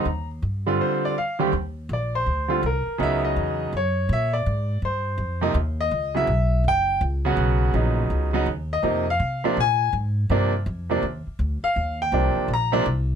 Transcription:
X:1
M:4/4
L:1/16
Q:"Swing" 1/4=164
K:Ablyd
V:1 name="Grand piano"
b2 z6 c2 d2 f3 z | z4 d2 c6 B4 | _f2 e6 _d4 f2 =d2- | d4 c6 z4 e2- |
e2 _f6 g4 z4 | z12 z2 ^d2- | ^d2 f6 a4 z4 | z12 z2 f2- |
f2 g6 b4 z4 |]
V:2 name="Grand piano" clef=bass
z6 [D,G,CF]6 z2 [E,,D,G,CG]2 | z8 z2 [D,G,CF]2 z4 | [_D,_G,_CE]8 z8 | z8 z2 [C,F,B,E]2 z4 |
z2 [_D,_G,_C_F]2 z8 z2 [D,G,C_G]2- | [_D,_G,_C_G]4 [^C,^F,=B,^D]6 [C,F,B,D]2 z4 | [C,F,B,E]2 z4 [C,F,B,D]2 z8 | [C,F,B,D]2 z4 [C,F,B,D]2 z8 |
z4 [C,F,B,D]4 z2 [C,F,B,D]2 z4 |]
V:3 name="Upright bass" clef=bass
E,,4 G,,4 z8 | E,,4 B,,,4 D,,4 C,,2 z2 | _D,,4 _F,,4 _G,,4 B,,4 | A,,4 G,,4 F,,4 E,,4 |
_D,,4 _C,,4 _G,,,4 D,,4 | =B,,,4 ^A,,,4 ^C,,4 ^D,,4 | F,,4 C,4 B,,4 A,,4 | G,,4 F,,4 E,,2 z2 D,,2 z2 |
E,,4 C,,2 z2 B,,,4 C,,4 |]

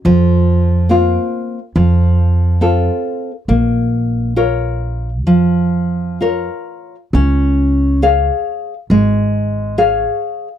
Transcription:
X:1
M:4/4
L:1/8
Q:1/4=69
K:Bbm
V:1 name="Nylon-string guitar"
F,2 [B,CF]2 F,2 [CF=A]2 | B,2 [FBd]2 F,2 [FBd]2 | [K:Db] D2 [Adf]2 A,2 [Adf]2 |]
V:2 name="Upright bass" clef=bass
F,,4 F,,4 | B,,,4 F,,4 | [K:Db] D,,4 A,,,4 |]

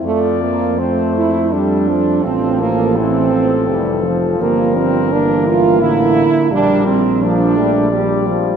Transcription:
X:1
M:3/4
L:1/8
Q:1/4=84
K:F
V:1 name="Flugelhorn"
d2 c2 A2 | A6 | B4- B z | B2 d4 |]
V:2 name="French horn section"
A, B, C E D2 | C B, C3 z | B, C D F E2 | D C D3 z |]
V:3 name="Euphonium" clef=bass
z2 A,2 G, F,- | F,2 E, F, E, F, | G,2 B,4 | G, z B, A, G,2 |]
V:4 name="Trombone section" clef=bass
F,2 A,2 G, F, | F,2 E, F, G, F,- | F,2 E,2 D,2 | G,2 F, G, G, F, |]
V:5 name="Tuba" clef=bass
F,,6 | A,,,4 F,,,2 | G,,,4 A,,, z | B,,,6 |]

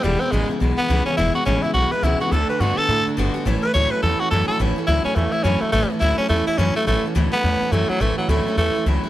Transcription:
X:1
M:4/4
L:1/8
Q:"Swing" 1/4=211
K:A
V:1 name="Tenor saxophone"
=G, =C ^G, z2 B,2 ^C | E F C E F B E F | A B F A2 z3 | z B c B A F A A |
z2 E C A, E C A, | A, z E C A, E C A, | A, z2 B,3 A, F, | A, F, A,2 A,2 z2 |]
V:2 name="Steel-string acoustic guitar"
[E,,B,,E,G,B,E] [E,G,B,E] [E,,B,,E,G,B,E] [E,G,B,E] [E,G,B,E] [E,G,B,E] [E,,B,,E,G,B,E] [E,G,B,E] | [E,,B,,E,G,B,E] [E,G,B,E] [E,,B,,E,G,B,E] [E,G,B,E] [E,G,B,E] [E,G,B,E] [E,,B,,E,G,B,E] [E,G,B,E] | [D,A,DF] [A,DF] [D,A,DF] [A,DF] [D,A,DF] [A,DF] [D,A,DF] [A,DF] | [A,,E,A,CE] [A,CE] [A,,E,A,CE] [A,CE] [E,A,CE] [A,CE] [A,,E,A,CE] [A,CE] |
[A,,E,A,CE] [A,CE] [A,,E,A,CE] [A,CE] [E,A,CE] [A,CE] [A,,E,A,CE] [A,CE] | [A,,E,A,CE] [A,CE] [A,,E,A,CE] [A,CE] [E,A,CE] [A,CE] [A,,E,A,CE] [A,CE] | [A,,E,A,CE] [A,CE] [A,,E,A,CE] [A,CE] [E,A,CE] [A,CE] [A,,E,A,CE] [A,CE] | [A,,E,A,CE] [A,CE] [A,,E,A,CE] [A,CE] [E,A,CE] [A,CE] [A,,E,A,CE] [CE] |]
V:3 name="Clean electric guitar" clef=bass
[E,,B,,]2 [E,,C,]2 [E,,B,,]2 [E,,C,]2 | [E,,B,,]2 [E,,C,]2 [E,,B,,]2 [E,,C,]2 | [D,A,]2 [D,B,]2 [D,A,]2 [D,B,]2 | [A,,E,]2 [A,,F,]2 [A,,E,]2 [A,,F,]2 |
[A,,E,]2 [A,,F,]2 [A,,E,]2 [A,,F,]2 | [A,,E,]2 [A,,F,]2 [A,,E,]2 [A,,F,]2 | [A,,E,]2 [A,,F,]2 [A,,E,]2 [A,,F,]2 | [A,,E,]2 [A,,F,]2 [A,,E,]2 [A,,F,]2 |]
V:4 name="Upright bass" clef=bass
E,,, z A,,, z B,,, z C,, z | E,,, z A,,, z B,,, z C,, z | D,, z =G,, z A,, z =G,,, z | A,,, z D,, z E,, z F,, z |
A,,, z D,, z E,, z F,, z | A,,, z D,, z E,, z F,, z | A,,, z D,, z E,, z F,, z | A,,, z D,, z E,, z C,, z |]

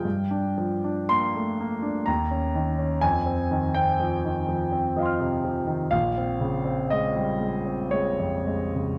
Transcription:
X:1
M:3/4
L:1/16
Q:1/4=61
K:Fm
V:1 name="Grand piano"
g4 c'4 b4 | a3 g4- g [efc'f']4 | [K:Bbdor] f4 e4 d4 |]
V:2 name="Grand piano" clef=bass
G,, =D F, D B, =A, B, D E,, _D E, D | F,, C E, C F, E, F, C F, C, F, E, | [K:Bbdor] B,,, C D, C A, G, A, C A, F,, A, D, |]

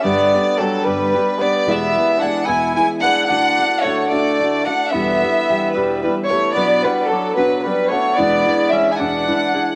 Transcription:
X:1
M:6/8
L:1/16
Q:3/8=74
K:Edor
V:1 name="Violin section"
d4 A2 B4 d2 | e4 f2 ^g2 g2 f2 | f4 c2 d4 f2 | e6 B2 B2 c2 |
d2 B2 A2 B2 B2 c2 | d4 e3/2 ^g/2 f6 |]
V:2 name="Harp"
G2 B2 g2 d'2 G2 B2 | E2 B2 ^g2 e'2 E2 B2 | D2 A2 f2 d'2 D2 A2 | E2 B2 g2 e'2 E2 B2 |
B2 f2 d'2 b'2 B2 f2 | E2 ^G2 e2 d'2 E2 G2 |]
V:3 name="Nylon-string guitar"
[G,,D,G,B,DG]2 [G,B,DG]2 [G,B,DG]2 [G,,D,G,B,DG]2 [G,B,DG]2 [G,B,DG]2 | [E,,B,,E,^G,B,^G]2 [E,G,B,G]2 [E,G,B,G]2 [E,,B,,E,G,B,G]2 [E,G,B,G]2 [E,G,B,G]2 | [D,A,DF]2 [A,DF]2 [D,A,DF]2 [D,A,DF]2 [D,A,DF]2 [A,DF]2 | [E,,B,,E,G,B,G]2 [E,G,B,G]2 [E,G,B,G]2 [E,,B,,E,G,B,G]2 [E,G,B,G]2 [E,G,B,G]2 |
[B,,F,B,DF]2 [B,DF]2 [F,B,DF]2 [B,,F,B,DF]2 [F,B,DF]2 [B,DF]2 | [E,,B,,E,^G,DE]2 [E,G,DE]2 [E,G,DE]2 [E,,B,,E,G,DE]2 [E,G,DE]2 [E,G,DE]2 |]
V:4 name="Trumpet"
B,4 F,2 G,4 B,2 | B,4 D2 E2 E2 D2 | D4 A,2 A,4 D2 | B,6 G,2 G,2 A,2 |
B,2 G,2 F,2 F,2 G,2 A,2 | B,4 C3/2 E/2 D6 |]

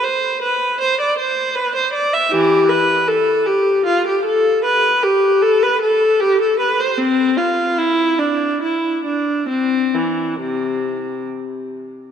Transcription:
X:1
M:3/4
L:1/16
Q:1/4=77
K:C
V:1 name="Viola"
c2 B2 c d c2 B c d e | [E,G]2 B2 A2 G2 F G A2 | B2 G2 A B A2 G A B c | C2 F2 E2 D2 E2 D2 |
C2 E,2 C,4 z4 |]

